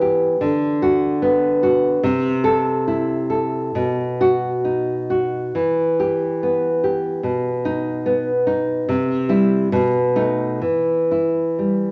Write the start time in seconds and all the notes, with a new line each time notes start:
Already playing: E3 B3
0.01 G4
0.41 D3
0.82 F#4
1.22 B3
1.63 F#4
2.03 C3
2.44 A4
2.87 E4
3.30 A4
3.75 B2
4.21 F#4
4.64 D#4
5.10 F#4
5.55 E3
6.00 G4
6.43 B3
6.84 G4
7.23 B2
7.65 D#4
8.06 B3
8.47 D#4
8.89 C3
9.29 G3 E4
9.72 B2
10.15 A3 D#4
10.61 E3
11.11 E4
11.59 G3